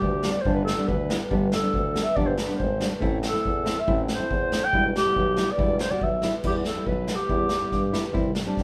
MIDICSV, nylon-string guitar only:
0, 0, Header, 1, 2, 480
1, 0, Start_track
1, 0, Key_signature, 1, "minor"
1, 0, Tempo, 427960
1, 502, Time_signature, 2, 2, 24, 8
1, 9681, End_track
2, 0, Start_track
2, 0, Title_t, "Nylon-string guitar"
2, 0, Program_c, 0, 24
2, 275, Note_on_c, 0, 55, 60
2, 283, Note_on_c, 0, 59, 65
2, 289, Note_on_c, 0, 62, 73
2, 389, Note_off_c, 0, 55, 0
2, 391, Note_off_c, 0, 59, 0
2, 396, Note_off_c, 0, 62, 0
2, 514, Note_on_c, 0, 55, 76
2, 515, Note_on_c, 0, 59, 69
2, 524, Note_on_c, 0, 62, 82
2, 689, Note_off_c, 0, 59, 0
2, 690, Note_off_c, 0, 55, 0
2, 695, Note_off_c, 0, 62, 0
2, 870, Note_on_c, 0, 55, 62
2, 875, Note_on_c, 0, 59, 55
2, 883, Note_on_c, 0, 62, 68
2, 1048, Note_off_c, 0, 55, 0
2, 1050, Note_off_c, 0, 59, 0
2, 1055, Note_off_c, 0, 62, 0
2, 1225, Note_on_c, 0, 55, 62
2, 1233, Note_on_c, 0, 59, 63
2, 1239, Note_on_c, 0, 64, 73
2, 1346, Note_off_c, 0, 55, 0
2, 1350, Note_off_c, 0, 59, 0
2, 1354, Note_off_c, 0, 64, 0
2, 1463, Note_on_c, 0, 55, 89
2, 1468, Note_on_c, 0, 59, 90
2, 1473, Note_on_c, 0, 62, 107
2, 1646, Note_off_c, 0, 55, 0
2, 1648, Note_off_c, 0, 59, 0
2, 1651, Note_off_c, 0, 62, 0
2, 1826, Note_on_c, 0, 55, 56
2, 1832, Note_on_c, 0, 62, 75
2, 1839, Note_on_c, 0, 59, 62
2, 2008, Note_off_c, 0, 55, 0
2, 2012, Note_off_c, 0, 59, 0
2, 2012, Note_off_c, 0, 62, 0
2, 2185, Note_on_c, 0, 55, 63
2, 2194, Note_on_c, 0, 59, 56
2, 2200, Note_on_c, 0, 62, 77
2, 2308, Note_off_c, 0, 55, 0
2, 2312, Note_off_c, 0, 59, 0
2, 2315, Note_off_c, 0, 62, 0
2, 2428, Note_on_c, 0, 55, 80
2, 2433, Note_on_c, 0, 59, 76
2, 2439, Note_on_c, 0, 62, 92
2, 2610, Note_off_c, 0, 55, 0
2, 2612, Note_off_c, 0, 59, 0
2, 2615, Note_off_c, 0, 62, 0
2, 2783, Note_on_c, 0, 55, 64
2, 2788, Note_on_c, 0, 62, 68
2, 2796, Note_on_c, 0, 59, 48
2, 2968, Note_off_c, 0, 55, 0
2, 2971, Note_off_c, 0, 62, 0
2, 2973, Note_off_c, 0, 59, 0
2, 3140, Note_on_c, 0, 55, 68
2, 3149, Note_on_c, 0, 59, 57
2, 3159, Note_on_c, 0, 62, 64
2, 3266, Note_off_c, 0, 55, 0
2, 3271, Note_off_c, 0, 59, 0
2, 3276, Note_off_c, 0, 62, 0
2, 3369, Note_on_c, 0, 57, 103
2, 3379, Note_on_c, 0, 60, 87
2, 3389, Note_on_c, 0, 64, 106
2, 3561, Note_off_c, 0, 57, 0
2, 3567, Note_off_c, 0, 60, 0
2, 3569, Note_off_c, 0, 64, 0
2, 3734, Note_on_c, 0, 57, 64
2, 3737, Note_on_c, 0, 60, 53
2, 3743, Note_on_c, 0, 64, 66
2, 3924, Note_off_c, 0, 57, 0
2, 3925, Note_off_c, 0, 60, 0
2, 3928, Note_off_c, 0, 64, 0
2, 4085, Note_on_c, 0, 57, 69
2, 4095, Note_on_c, 0, 60, 67
2, 4098, Note_on_c, 0, 64, 66
2, 4219, Note_off_c, 0, 57, 0
2, 4225, Note_off_c, 0, 60, 0
2, 4226, Note_off_c, 0, 64, 0
2, 4346, Note_on_c, 0, 57, 80
2, 4348, Note_on_c, 0, 60, 66
2, 4352, Note_on_c, 0, 64, 92
2, 4530, Note_off_c, 0, 57, 0
2, 4530, Note_off_c, 0, 60, 0
2, 4533, Note_off_c, 0, 64, 0
2, 4692, Note_on_c, 0, 57, 62
2, 4697, Note_on_c, 0, 60, 56
2, 4707, Note_on_c, 0, 64, 70
2, 4883, Note_off_c, 0, 57, 0
2, 4885, Note_off_c, 0, 60, 0
2, 4890, Note_off_c, 0, 64, 0
2, 5074, Note_on_c, 0, 57, 59
2, 5083, Note_on_c, 0, 60, 59
2, 5085, Note_on_c, 0, 62, 63
2, 5193, Note_off_c, 0, 57, 0
2, 5198, Note_off_c, 0, 62, 0
2, 5199, Note_off_c, 0, 60, 0
2, 5303, Note_on_c, 0, 55, 67
2, 5305, Note_on_c, 0, 59, 73
2, 5322, Note_on_c, 0, 64, 82
2, 5488, Note_off_c, 0, 55, 0
2, 5488, Note_off_c, 0, 59, 0
2, 5497, Note_off_c, 0, 64, 0
2, 5668, Note_on_c, 0, 55, 65
2, 5679, Note_on_c, 0, 59, 63
2, 5679, Note_on_c, 0, 64, 61
2, 5850, Note_off_c, 0, 55, 0
2, 5854, Note_off_c, 0, 64, 0
2, 5856, Note_off_c, 0, 59, 0
2, 6030, Note_on_c, 0, 55, 62
2, 6037, Note_on_c, 0, 59, 58
2, 6042, Note_on_c, 0, 64, 63
2, 6152, Note_off_c, 0, 55, 0
2, 6154, Note_off_c, 0, 59, 0
2, 6154, Note_off_c, 0, 64, 0
2, 6253, Note_on_c, 0, 55, 74
2, 6261, Note_on_c, 0, 59, 80
2, 6277, Note_on_c, 0, 64, 78
2, 6442, Note_off_c, 0, 55, 0
2, 6445, Note_off_c, 0, 59, 0
2, 6454, Note_off_c, 0, 64, 0
2, 6631, Note_on_c, 0, 55, 52
2, 6638, Note_on_c, 0, 59, 56
2, 6647, Note_on_c, 0, 66, 77
2, 6810, Note_off_c, 0, 55, 0
2, 6815, Note_off_c, 0, 59, 0
2, 6817, Note_off_c, 0, 66, 0
2, 6991, Note_on_c, 0, 55, 64
2, 6996, Note_on_c, 0, 59, 57
2, 7001, Note_on_c, 0, 64, 73
2, 7110, Note_off_c, 0, 55, 0
2, 7112, Note_off_c, 0, 59, 0
2, 7115, Note_off_c, 0, 64, 0
2, 7220, Note_on_c, 0, 55, 68
2, 7232, Note_on_c, 0, 59, 66
2, 7234, Note_on_c, 0, 64, 78
2, 7404, Note_off_c, 0, 55, 0
2, 7410, Note_off_c, 0, 64, 0
2, 7411, Note_off_c, 0, 59, 0
2, 7580, Note_on_c, 0, 59, 59
2, 7586, Note_on_c, 0, 55, 61
2, 7593, Note_on_c, 0, 64, 59
2, 7764, Note_off_c, 0, 59, 0
2, 7766, Note_off_c, 0, 55, 0
2, 7770, Note_off_c, 0, 64, 0
2, 7949, Note_on_c, 0, 55, 57
2, 7950, Note_on_c, 0, 59, 54
2, 7956, Note_on_c, 0, 66, 59
2, 8068, Note_off_c, 0, 55, 0
2, 8068, Note_off_c, 0, 59, 0
2, 8071, Note_off_c, 0, 66, 0
2, 8177, Note_on_c, 0, 55, 72
2, 8182, Note_on_c, 0, 59, 63
2, 8192, Note_on_c, 0, 64, 84
2, 8361, Note_off_c, 0, 55, 0
2, 8363, Note_off_c, 0, 59, 0
2, 8369, Note_off_c, 0, 64, 0
2, 8533, Note_on_c, 0, 55, 64
2, 8541, Note_on_c, 0, 59, 58
2, 8544, Note_on_c, 0, 64, 67
2, 8718, Note_off_c, 0, 55, 0
2, 8722, Note_off_c, 0, 64, 0
2, 8723, Note_off_c, 0, 59, 0
2, 8881, Note_on_c, 0, 55, 76
2, 8894, Note_on_c, 0, 59, 61
2, 8897, Note_on_c, 0, 64, 82
2, 9012, Note_off_c, 0, 55, 0
2, 9018, Note_off_c, 0, 64, 0
2, 9019, Note_off_c, 0, 59, 0
2, 9116, Note_on_c, 0, 55, 90
2, 9127, Note_on_c, 0, 60, 85
2, 9131, Note_on_c, 0, 64, 100
2, 9308, Note_off_c, 0, 55, 0
2, 9314, Note_off_c, 0, 60, 0
2, 9314, Note_off_c, 0, 64, 0
2, 9488, Note_on_c, 0, 55, 76
2, 9495, Note_on_c, 0, 60, 63
2, 9500, Note_on_c, 0, 62, 81
2, 9673, Note_off_c, 0, 55, 0
2, 9677, Note_off_c, 0, 60, 0
2, 9679, Note_off_c, 0, 62, 0
2, 9681, End_track
0, 0, End_of_file